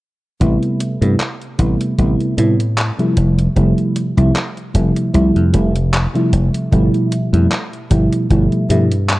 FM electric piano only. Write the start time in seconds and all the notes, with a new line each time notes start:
0.40 C3 G3 A3 B3 E4
1.01 C3 G3 A3 B3 E4
1.58 C3 G3 A3 B3 E4
1.98 C3 G3 A3 B3 E4
2.37 C3 G3 A3 B3 E4
2.98 C3 F3 G3 A3 E4
3.56 C3 F3 G3 A3 E4
4.17 C3 F3 G3 A3 E4
4.74 C3 F3 G3 A3 E4
5.13 C3 F3 G3 A3 E4
5.53 C3 F3 G3 A3 E4
6.14 C3 F3 G3 A3 E4
6.71 B2 F3 G3 A3 E4
7.33 B2 F3 G3 A3 E4
7.90 B2 F3 G3 A3 E4
8.30 B2 F3 G3 A3 E4
8.69 B2 F3 G3 A3 E4